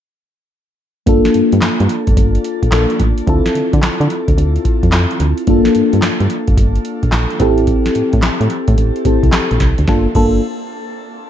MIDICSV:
0, 0, Header, 1, 4, 480
1, 0, Start_track
1, 0, Tempo, 550459
1, 935, Time_signature, 4, 2, 24, 8
1, 9853, End_track
2, 0, Start_track
2, 0, Title_t, "FM electric piano"
2, 0, Program_c, 0, 5
2, 927, Note_on_c, 0, 58, 73
2, 933, Note_on_c, 0, 62, 61
2, 941, Note_on_c, 0, 65, 69
2, 948, Note_on_c, 0, 69, 81
2, 1097, Control_c, 0, 64, 127
2, 2342, Note_off_c, 0, 58, 0
2, 2345, Note_off_c, 0, 62, 0
2, 2349, Note_off_c, 0, 65, 0
2, 2353, Note_off_c, 0, 69, 0
2, 2374, Note_on_c, 0, 58, 54
2, 2380, Note_on_c, 0, 62, 51
2, 2383, Note_on_c, 0, 65, 46
2, 2385, Note_on_c, 0, 69, 58
2, 2850, Note_on_c, 0, 60, 73
2, 2855, Note_off_c, 0, 58, 0
2, 2855, Note_off_c, 0, 65, 0
2, 2858, Note_off_c, 0, 62, 0
2, 2858, Note_on_c, 0, 64, 69
2, 2860, Note_off_c, 0, 69, 0
2, 2865, Note_on_c, 0, 65, 68
2, 2866, Control_c, 0, 64, 0
2, 2872, Note_on_c, 0, 69, 87
2, 2995, Control_c, 0, 64, 127
2, 4738, Note_off_c, 0, 60, 0
2, 4742, Note_off_c, 0, 64, 0
2, 4745, Note_off_c, 0, 65, 0
2, 4749, Note_off_c, 0, 69, 0
2, 4772, Note_on_c, 0, 58, 79
2, 4780, Note_on_c, 0, 62, 69
2, 4787, Note_on_c, 0, 65, 67
2, 4788, Control_c, 0, 64, 0
2, 4795, Note_on_c, 0, 69, 78
2, 4926, Control_c, 0, 64, 127
2, 6420, Note_off_c, 0, 58, 0
2, 6424, Note_off_c, 0, 62, 0
2, 6428, Note_off_c, 0, 65, 0
2, 6432, Note_off_c, 0, 69, 0
2, 6449, Note_on_c, 0, 60, 76
2, 6454, Note_on_c, 0, 64, 70
2, 6464, Note_on_c, 0, 67, 68
2, 6467, Control_c, 0, 64, 0
2, 6469, Note_on_c, 0, 69, 80
2, 6603, Control_c, 0, 64, 127
2, 7863, Note_off_c, 0, 60, 0
2, 7866, Note_off_c, 0, 64, 0
2, 7871, Note_off_c, 0, 67, 0
2, 7874, Note_off_c, 0, 69, 0
2, 7893, Note_on_c, 0, 60, 49
2, 7898, Note_on_c, 0, 64, 51
2, 7901, Note_on_c, 0, 67, 49
2, 7904, Note_on_c, 0, 69, 56
2, 8611, Note_off_c, 0, 69, 0
2, 8614, Note_off_c, 0, 60, 0
2, 8617, Note_off_c, 0, 64, 0
2, 8618, Note_off_c, 0, 67, 0
2, 8621, Note_on_c, 0, 69, 86
2, 8622, Note_on_c, 0, 58, 75
2, 8622, Note_on_c, 0, 62, 68
2, 8622, Note_on_c, 0, 65, 73
2, 8625, Control_c, 0, 64, 0
2, 8780, Note_off_c, 0, 58, 0
2, 8780, Note_off_c, 0, 62, 0
2, 8780, Note_off_c, 0, 65, 0
2, 8780, Note_off_c, 0, 69, 0
2, 8859, Note_on_c, 0, 65, 73
2, 8860, Note_on_c, 0, 62, 72
2, 8860, Note_on_c, 0, 69, 90
2, 8861, Note_on_c, 0, 58, 81
2, 9080, Note_off_c, 0, 65, 0
2, 9081, Note_off_c, 0, 58, 0
2, 9081, Note_off_c, 0, 62, 0
2, 9081, Note_off_c, 0, 69, 0
2, 9853, End_track
3, 0, Start_track
3, 0, Title_t, "FM bass"
3, 0, Program_c, 1, 39
3, 935, Note_on_c, 1, 31, 98
3, 1054, Note_off_c, 1, 31, 0
3, 1178, Note_on_c, 1, 43, 50
3, 1240, Note_off_c, 1, 43, 0
3, 1334, Note_on_c, 1, 43, 94
3, 1396, Note_off_c, 1, 43, 0
3, 1417, Note_on_c, 1, 43, 47
3, 1480, Note_off_c, 1, 43, 0
3, 1573, Note_on_c, 1, 43, 99
3, 1636, Note_off_c, 1, 43, 0
3, 1811, Note_on_c, 1, 31, 89
3, 1874, Note_off_c, 1, 31, 0
3, 1893, Note_on_c, 1, 31, 106
3, 2077, Note_off_c, 1, 31, 0
3, 2292, Note_on_c, 1, 34, 80
3, 2355, Note_off_c, 1, 34, 0
3, 2376, Note_on_c, 1, 34, 112
3, 2495, Note_off_c, 1, 34, 0
3, 2617, Note_on_c, 1, 33, 91
3, 2736, Note_off_c, 1, 33, 0
3, 2856, Note_on_c, 1, 38, 115
3, 2975, Note_off_c, 1, 38, 0
3, 3096, Note_on_c, 1, 50, 53
3, 3159, Note_off_c, 1, 50, 0
3, 3256, Note_on_c, 1, 50, 86
3, 3318, Note_off_c, 1, 50, 0
3, 3336, Note_on_c, 1, 50, 49
3, 3398, Note_off_c, 1, 50, 0
3, 3491, Note_on_c, 1, 50, 107
3, 3555, Note_off_c, 1, 50, 0
3, 3734, Note_on_c, 1, 38, 92
3, 3797, Note_off_c, 1, 38, 0
3, 3817, Note_on_c, 1, 38, 97
3, 3999, Note_off_c, 1, 38, 0
3, 4214, Note_on_c, 1, 41, 83
3, 4277, Note_off_c, 1, 41, 0
3, 4295, Note_on_c, 1, 41, 100
3, 4414, Note_off_c, 1, 41, 0
3, 4537, Note_on_c, 1, 38, 86
3, 4656, Note_off_c, 1, 38, 0
3, 4775, Note_on_c, 1, 31, 107
3, 4895, Note_off_c, 1, 31, 0
3, 5018, Note_on_c, 1, 43, 48
3, 5080, Note_off_c, 1, 43, 0
3, 5175, Note_on_c, 1, 43, 89
3, 5237, Note_off_c, 1, 43, 0
3, 5257, Note_on_c, 1, 43, 46
3, 5319, Note_off_c, 1, 43, 0
3, 5411, Note_on_c, 1, 43, 90
3, 5475, Note_off_c, 1, 43, 0
3, 5651, Note_on_c, 1, 31, 91
3, 5715, Note_off_c, 1, 31, 0
3, 5733, Note_on_c, 1, 31, 96
3, 5917, Note_off_c, 1, 31, 0
3, 6132, Note_on_c, 1, 34, 87
3, 6195, Note_off_c, 1, 34, 0
3, 6215, Note_on_c, 1, 34, 93
3, 6335, Note_off_c, 1, 34, 0
3, 6454, Note_on_c, 1, 33, 90
3, 6757, Note_off_c, 1, 33, 0
3, 6939, Note_on_c, 1, 45, 52
3, 7000, Note_off_c, 1, 45, 0
3, 7094, Note_on_c, 1, 45, 95
3, 7156, Note_off_c, 1, 45, 0
3, 7330, Note_on_c, 1, 45, 95
3, 7394, Note_off_c, 1, 45, 0
3, 7569, Note_on_c, 1, 45, 99
3, 7634, Note_off_c, 1, 45, 0
3, 7657, Note_on_c, 1, 33, 99
3, 7776, Note_off_c, 1, 33, 0
3, 7894, Note_on_c, 1, 33, 82
3, 8014, Note_off_c, 1, 33, 0
3, 8051, Note_on_c, 1, 36, 90
3, 8115, Note_off_c, 1, 36, 0
3, 8297, Note_on_c, 1, 34, 90
3, 8358, Note_off_c, 1, 34, 0
3, 8377, Note_on_c, 1, 36, 86
3, 8496, Note_off_c, 1, 36, 0
3, 8534, Note_on_c, 1, 38, 87
3, 8596, Note_off_c, 1, 38, 0
3, 8616, Note_on_c, 1, 31, 102
3, 8777, Note_off_c, 1, 31, 0
3, 8853, Note_on_c, 1, 31, 105
3, 9077, Note_off_c, 1, 31, 0
3, 9853, End_track
4, 0, Start_track
4, 0, Title_t, "Drums"
4, 932, Note_on_c, 9, 42, 70
4, 934, Note_on_c, 9, 36, 104
4, 1019, Note_off_c, 9, 42, 0
4, 1021, Note_off_c, 9, 36, 0
4, 1091, Note_on_c, 9, 38, 69
4, 1091, Note_on_c, 9, 42, 58
4, 1170, Note_off_c, 9, 42, 0
4, 1170, Note_on_c, 9, 42, 70
4, 1178, Note_off_c, 9, 38, 0
4, 1258, Note_off_c, 9, 42, 0
4, 1329, Note_on_c, 9, 42, 49
4, 1408, Note_on_c, 9, 39, 86
4, 1411, Note_off_c, 9, 42, 0
4, 1411, Note_on_c, 9, 38, 111
4, 1411, Note_on_c, 9, 42, 73
4, 1496, Note_off_c, 9, 39, 0
4, 1498, Note_off_c, 9, 38, 0
4, 1498, Note_off_c, 9, 42, 0
4, 1571, Note_on_c, 9, 42, 57
4, 1651, Note_off_c, 9, 42, 0
4, 1651, Note_on_c, 9, 42, 78
4, 1738, Note_off_c, 9, 42, 0
4, 1806, Note_on_c, 9, 42, 59
4, 1809, Note_on_c, 9, 36, 97
4, 1892, Note_off_c, 9, 36, 0
4, 1892, Note_on_c, 9, 36, 90
4, 1893, Note_off_c, 9, 42, 0
4, 1893, Note_on_c, 9, 42, 91
4, 1979, Note_off_c, 9, 36, 0
4, 1980, Note_off_c, 9, 42, 0
4, 2049, Note_on_c, 9, 42, 44
4, 2132, Note_off_c, 9, 42, 0
4, 2132, Note_on_c, 9, 42, 69
4, 2219, Note_off_c, 9, 42, 0
4, 2290, Note_on_c, 9, 36, 87
4, 2291, Note_on_c, 9, 42, 43
4, 2369, Note_off_c, 9, 42, 0
4, 2369, Note_on_c, 9, 42, 58
4, 2370, Note_on_c, 9, 39, 86
4, 2372, Note_on_c, 9, 38, 108
4, 2377, Note_off_c, 9, 36, 0
4, 2457, Note_off_c, 9, 39, 0
4, 2457, Note_off_c, 9, 42, 0
4, 2459, Note_off_c, 9, 38, 0
4, 2529, Note_on_c, 9, 42, 44
4, 2612, Note_off_c, 9, 42, 0
4, 2612, Note_on_c, 9, 42, 85
4, 2615, Note_on_c, 9, 36, 87
4, 2700, Note_off_c, 9, 42, 0
4, 2702, Note_off_c, 9, 36, 0
4, 2770, Note_on_c, 9, 42, 49
4, 2855, Note_off_c, 9, 42, 0
4, 2855, Note_on_c, 9, 42, 62
4, 2856, Note_on_c, 9, 36, 98
4, 2942, Note_off_c, 9, 42, 0
4, 2943, Note_off_c, 9, 36, 0
4, 3015, Note_on_c, 9, 38, 73
4, 3015, Note_on_c, 9, 42, 55
4, 3099, Note_off_c, 9, 42, 0
4, 3099, Note_on_c, 9, 42, 68
4, 3102, Note_off_c, 9, 38, 0
4, 3186, Note_off_c, 9, 42, 0
4, 3255, Note_on_c, 9, 42, 53
4, 3256, Note_on_c, 9, 36, 91
4, 3335, Note_on_c, 9, 39, 89
4, 3338, Note_off_c, 9, 42, 0
4, 3338, Note_on_c, 9, 38, 113
4, 3338, Note_on_c, 9, 42, 74
4, 3343, Note_off_c, 9, 36, 0
4, 3423, Note_off_c, 9, 39, 0
4, 3425, Note_off_c, 9, 38, 0
4, 3425, Note_off_c, 9, 42, 0
4, 3497, Note_on_c, 9, 42, 58
4, 3577, Note_off_c, 9, 42, 0
4, 3577, Note_on_c, 9, 42, 74
4, 3664, Note_off_c, 9, 42, 0
4, 3733, Note_on_c, 9, 36, 99
4, 3733, Note_on_c, 9, 42, 63
4, 3820, Note_off_c, 9, 36, 0
4, 3820, Note_off_c, 9, 42, 0
4, 3821, Note_on_c, 9, 42, 88
4, 3909, Note_off_c, 9, 42, 0
4, 3974, Note_on_c, 9, 42, 45
4, 4055, Note_off_c, 9, 42, 0
4, 4055, Note_on_c, 9, 36, 86
4, 4055, Note_on_c, 9, 42, 72
4, 4142, Note_off_c, 9, 36, 0
4, 4143, Note_off_c, 9, 42, 0
4, 4212, Note_on_c, 9, 36, 84
4, 4214, Note_on_c, 9, 42, 41
4, 4290, Note_off_c, 9, 42, 0
4, 4290, Note_on_c, 9, 39, 94
4, 4290, Note_on_c, 9, 42, 60
4, 4293, Note_on_c, 9, 38, 113
4, 4299, Note_off_c, 9, 36, 0
4, 4377, Note_off_c, 9, 42, 0
4, 4378, Note_off_c, 9, 39, 0
4, 4380, Note_off_c, 9, 38, 0
4, 4453, Note_on_c, 9, 42, 42
4, 4534, Note_off_c, 9, 42, 0
4, 4534, Note_on_c, 9, 42, 88
4, 4622, Note_off_c, 9, 42, 0
4, 4688, Note_on_c, 9, 42, 48
4, 4771, Note_off_c, 9, 42, 0
4, 4771, Note_on_c, 9, 42, 71
4, 4774, Note_on_c, 9, 36, 106
4, 4858, Note_off_c, 9, 42, 0
4, 4861, Note_off_c, 9, 36, 0
4, 4928, Note_on_c, 9, 38, 72
4, 4928, Note_on_c, 9, 42, 56
4, 5012, Note_off_c, 9, 42, 0
4, 5012, Note_on_c, 9, 42, 72
4, 5015, Note_off_c, 9, 38, 0
4, 5099, Note_off_c, 9, 42, 0
4, 5170, Note_on_c, 9, 42, 54
4, 5249, Note_on_c, 9, 39, 84
4, 5251, Note_off_c, 9, 42, 0
4, 5251, Note_on_c, 9, 42, 73
4, 5252, Note_on_c, 9, 38, 108
4, 5336, Note_off_c, 9, 39, 0
4, 5338, Note_off_c, 9, 42, 0
4, 5339, Note_off_c, 9, 38, 0
4, 5410, Note_on_c, 9, 42, 54
4, 5492, Note_off_c, 9, 42, 0
4, 5492, Note_on_c, 9, 42, 74
4, 5580, Note_off_c, 9, 42, 0
4, 5646, Note_on_c, 9, 42, 58
4, 5650, Note_on_c, 9, 36, 99
4, 5733, Note_off_c, 9, 36, 0
4, 5733, Note_on_c, 9, 36, 97
4, 5734, Note_off_c, 9, 42, 0
4, 5734, Note_on_c, 9, 42, 94
4, 5820, Note_off_c, 9, 36, 0
4, 5821, Note_off_c, 9, 42, 0
4, 5891, Note_on_c, 9, 42, 47
4, 5971, Note_off_c, 9, 42, 0
4, 5971, Note_on_c, 9, 42, 74
4, 6059, Note_off_c, 9, 42, 0
4, 6129, Note_on_c, 9, 42, 42
4, 6130, Note_on_c, 9, 36, 88
4, 6209, Note_off_c, 9, 42, 0
4, 6209, Note_on_c, 9, 42, 61
4, 6210, Note_on_c, 9, 39, 88
4, 6212, Note_on_c, 9, 38, 110
4, 6217, Note_off_c, 9, 36, 0
4, 6297, Note_off_c, 9, 39, 0
4, 6297, Note_off_c, 9, 42, 0
4, 6299, Note_off_c, 9, 38, 0
4, 6370, Note_on_c, 9, 42, 47
4, 6450, Note_off_c, 9, 42, 0
4, 6450, Note_on_c, 9, 42, 93
4, 6454, Note_on_c, 9, 36, 90
4, 6537, Note_off_c, 9, 42, 0
4, 6541, Note_off_c, 9, 36, 0
4, 6607, Note_on_c, 9, 42, 51
4, 6689, Note_off_c, 9, 42, 0
4, 6689, Note_on_c, 9, 42, 66
4, 6693, Note_on_c, 9, 36, 99
4, 6776, Note_off_c, 9, 42, 0
4, 6780, Note_off_c, 9, 36, 0
4, 6851, Note_on_c, 9, 38, 70
4, 6852, Note_on_c, 9, 42, 57
4, 6933, Note_off_c, 9, 42, 0
4, 6933, Note_on_c, 9, 42, 71
4, 6939, Note_off_c, 9, 38, 0
4, 7020, Note_off_c, 9, 42, 0
4, 7088, Note_on_c, 9, 42, 51
4, 7093, Note_on_c, 9, 36, 102
4, 7170, Note_on_c, 9, 39, 90
4, 7172, Note_off_c, 9, 42, 0
4, 7172, Note_on_c, 9, 38, 110
4, 7172, Note_on_c, 9, 42, 73
4, 7180, Note_off_c, 9, 36, 0
4, 7257, Note_off_c, 9, 39, 0
4, 7259, Note_off_c, 9, 42, 0
4, 7260, Note_off_c, 9, 38, 0
4, 7331, Note_on_c, 9, 42, 58
4, 7412, Note_off_c, 9, 42, 0
4, 7412, Note_on_c, 9, 42, 71
4, 7499, Note_off_c, 9, 42, 0
4, 7566, Note_on_c, 9, 42, 57
4, 7569, Note_on_c, 9, 36, 104
4, 7653, Note_off_c, 9, 42, 0
4, 7654, Note_on_c, 9, 42, 86
4, 7657, Note_off_c, 9, 36, 0
4, 7741, Note_off_c, 9, 42, 0
4, 7812, Note_on_c, 9, 42, 44
4, 7892, Note_off_c, 9, 42, 0
4, 7892, Note_on_c, 9, 42, 72
4, 7893, Note_on_c, 9, 36, 88
4, 7979, Note_off_c, 9, 42, 0
4, 7981, Note_off_c, 9, 36, 0
4, 8050, Note_on_c, 9, 36, 83
4, 8053, Note_on_c, 9, 42, 41
4, 8130, Note_off_c, 9, 42, 0
4, 8130, Note_on_c, 9, 39, 93
4, 8130, Note_on_c, 9, 42, 59
4, 8133, Note_on_c, 9, 38, 106
4, 8137, Note_off_c, 9, 36, 0
4, 8217, Note_off_c, 9, 39, 0
4, 8217, Note_off_c, 9, 42, 0
4, 8220, Note_off_c, 9, 38, 0
4, 8292, Note_on_c, 9, 42, 44
4, 8372, Note_off_c, 9, 42, 0
4, 8372, Note_on_c, 9, 42, 91
4, 8374, Note_on_c, 9, 38, 64
4, 8375, Note_on_c, 9, 36, 85
4, 8459, Note_off_c, 9, 42, 0
4, 8461, Note_off_c, 9, 38, 0
4, 8462, Note_off_c, 9, 36, 0
4, 8529, Note_on_c, 9, 42, 47
4, 8611, Note_on_c, 9, 38, 77
4, 8613, Note_on_c, 9, 36, 98
4, 8616, Note_off_c, 9, 42, 0
4, 8699, Note_off_c, 9, 38, 0
4, 8700, Note_off_c, 9, 36, 0
4, 8850, Note_on_c, 9, 49, 76
4, 8853, Note_on_c, 9, 36, 100
4, 8937, Note_off_c, 9, 49, 0
4, 8940, Note_off_c, 9, 36, 0
4, 9853, End_track
0, 0, End_of_file